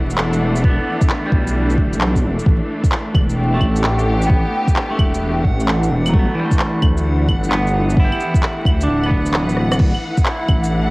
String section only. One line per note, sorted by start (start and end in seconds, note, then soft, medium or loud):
0.00 6.12 E3 medium
0.00 9.80 A3 medium
0.00 9.81 D4 medium
0.00 2.48 F#5 medium
3.32 6.13 G4 medium
6.14 10.90 E3 medium
7.66 10.90 F#5 medium
9.97 10.90 A3 medium
10.51 10.90 D4 medium